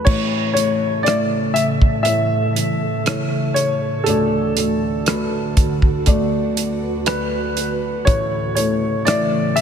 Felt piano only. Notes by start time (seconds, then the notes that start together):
0.06 A1 A2 A3 E4 C#5
0.56 A3 E4
1.06 A3 E4 E5
2.06 A3 E4 C#5
3.06 A3 E4 C#5
4.07 D2 D3 A3 F#4 D5
4.57 A3 F#4 D5
5.07 A3 F#4 B4
6.06 A3 F#4 D5
7.06 A3 F#4 D5
8.07 A1 A2 A3 E4 C#5
8.57 A3 E4 A4
9.06 A3 E4 E5